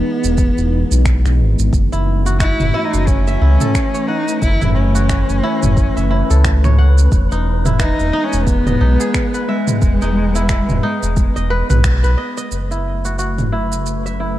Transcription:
0.00 1.69 E3 loud
0.00 1.69 G#3 medium
0.00 1.39 B3 medium
0.00 1.69 B3 medium
0.00 1.68 D#4 medium
0.24 0.50 E1 medium
0.24 shaker medium
0.38 kick medium
0.38 shaker medium
0.58 0.84 E1 loud
0.58 shaker soft
0.91 1.25 B1 medium
0.91 shaker medium
1.05 finger snap medium
1.05 kick loud
1.05 shaker medium
1.25 1.41 B1 medium
1.25 finger snap soft
1.25 shaker soft
1.39 1.55 G#1 medium
1.59 1.70 G#1 medium
1.59 shaker medium
1.72 1.89 F#1 loud
1.72 7.08 E3 medium
1.72 7.08 A3 medium
1.72 7.08 C#4 medium
1.72 4.40 F#4 medium
1.72 12.50 B4 medium
1.72 kick loud
1.72 shaker medium
1.92 2.54 F#1 medium
1.92 2.74 E4 medium
1.92 shaker soft
2.26 2.40 F#4 medium
2.26 shaker medium
2.40 2.86 E4 loud
2.40 3.86 F#4 medium
2.40 finger snap medium
2.40 kick loud
2.40 shaker medium
2.60 2.71 F#1 medium
2.60 mid tom medium
2.60 shaker soft
2.74 3.41 E4 loud
2.85 3.08 D#4 loud
2.94 3.37 F#1 medium
2.94 shaker medium
3.07 4.08 C#4 loud
3.07 kick loud
3.07 shaker medium
3.27 4.31 E5 medium
3.27 shaker soft
3.41 3.57 C#2 medium
3.41 4.61 E4 medium
3.61 4.93 A4 medium
3.61 mid tom medium
3.61 shaker medium
3.75 finger snap medium
3.75 kick loud
3.75 shaker medium
3.94 5.09 C#5 medium
3.94 shaker soft
4.07 4.40 D#4 loud
4.07 5.05 F#5 medium
4.28 shaker medium
4.41 4.58 F#1 medium
4.41 4.73 E4 medium
4.41 kick medium
4.41 shaker soft
4.61 5.23 F#1 loud
4.61 5.43 E4 medium
4.61 mid tom medium
4.61 shaker soft
4.74 6.73 C#4 medium
4.95 5.09 F#4 medium
4.95 shaker medium
5.09 6.55 F#4 medium
5.09 finger snap medium
5.09 kick medium
5.09 shaker soft
5.29 5.41 F#1 medium
5.29 shaker soft
5.43 6.10 E4 loud
5.63 5.89 F#1 medium
5.63 mid tom medium
5.63 shaker medium
5.77 kick loud
5.77 shaker medium
5.97 6.23 F#1 loud
5.97 7.00 E5 medium
5.97 shaker soft
6.11 7.38 E4 medium
6.30 7.08 C#2 loud
6.30 7.62 A4 medium
6.30 shaker medium
6.44 finger snap medium
6.44 kick medium
6.44 shaker medium
6.64 7.79 C#5 medium
6.64 finger snap soft
6.64 mid tom medium
6.64 shaker soft
6.78 7.75 F#5 medium
6.98 shaker medium
7.12 7.28 E1 medium
7.12 12.48 G#3 medium
7.12 12.48 B3 medium
7.12 kick loud
7.12 shaker soft
7.32 7.93 E1 loud
7.32 7.72 D#4 medium
7.32 shaker soft
7.65 8.19 E4 medium
7.65 mid tom medium
7.65 shaker medium
7.79 10.14 E3 medium
7.79 8.26 D#4 loud
7.79 finger snap medium
7.79 kick loud
7.79 shaker soft
8.00 8.11 E1 medium
8.00 shaker soft
8.13 8.80 D#4 loud
8.24 8.46 C#4 loud
8.33 8.77 E1 medium
8.33 shaker medium
8.46 9.44 B3 loud
8.46 kick medium
8.46 shaker soft
8.67 9.55 D#5 medium
8.67 mid tom medium
8.67 shaker soft
8.81 8.97 B1 medium
8.81 9.55 D#4 medium
9.00 10.37 G#4 medium
9.00 shaker medium
9.14 finger snap loud
9.14 kick medium
9.14 shaker medium
9.34 10.57 B4 medium
9.34 shaker soft
9.48 11.80 G#3 loud
9.48 10.08 E5 medium
9.68 mid tom medium
9.68 shaker medium
9.82 9.98 E1 loud
9.82 kick loud
9.82 shaker soft
10.02 10.63 E1 medium
10.02 10.41 D#4 medium
10.02 shaker soft
10.35 10.49 E4 medium
10.35 shaker medium
10.49 10.89 E4 medium
10.49 finger snap loud
10.49 kick medium
10.49 shaker soft
10.69 10.80 E1 medium
10.69 mid tom medium
10.69 shaker soft
10.83 12.45 D#4 medium
11.03 11.29 E1 medium
11.03 shaker medium
11.17 kick loud
11.17 shaker medium
11.36 11.63 E1 loud
11.36 12.17 D#5 medium
11.36 shaker soft
11.50 11.69 B4 loud
11.70 12.03 B1 loud
11.70 12.03 B4 medium
11.70 mid tom medium
11.70 shaker medium
11.84 finger snap loud
11.84 kick medium
11.84 shaker medium
12.04 12.15 B1 loud
12.04 13.27 B4 medium
12.04 shaker soft
12.17 12.37 D#5 medium
12.37 12.77 D#5 medium
12.37 shaker medium
12.51 14.39 F#1 medium
12.51 14.39 C#3 medium
12.51 14.39 F#3 medium
12.51 14.39 A3 medium
12.51 14.39 B4 medium
12.51 shaker soft
12.71 13.52 E4 medium
12.71 shaker soft
13.05 13.18 F#4 medium
13.05 shaker medium
13.19 14.39 F#4 medium
13.19 shaker soft
13.38 mid tom medium
13.38 shaker soft
13.52 14.20 E4 medium
13.72 shaker medium
13.86 shaker soft
14.06 14.39 E5 medium
14.06 shaker soft
14.20 14.39 E4 medium

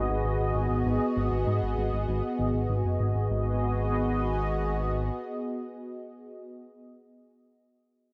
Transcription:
0.00 3.26 B3 medium
0.00 3.26 F#4 medium
0.00 3.26 G#4 medium
0.00 3.26 D#5 medium
0.09 0.23 G#1 medium
0.25 0.38 G#1 medium
0.40 0.53 G#1 medium
0.55 0.68 G#1 medium
0.70 0.84 G#1 medium
0.86 0.99 G#1 loud
1.17 1.30 G#1 loud
1.32 1.45 G#1 medium
1.47 1.60 G#2 loud
1.63 1.76 G#1 medium
1.78 1.91 G#1 medium
1.93 2.06 G#1 medium
2.08 2.22 G#1 loud
2.39 2.52 G#1 medium
2.54 2.68 G#1 medium
2.69 2.83 G#1 loud
2.85 2.98 F#1 medium
3.00 3.13 G#1 medium
3.15 3.29 G#1 medium
3.30 5.10 G#1 medium
3.30 6.51 B3 medium
3.30 6.51 F#4 medium
3.30 6.51 G#4 medium
3.30 6.51 D#5 medium

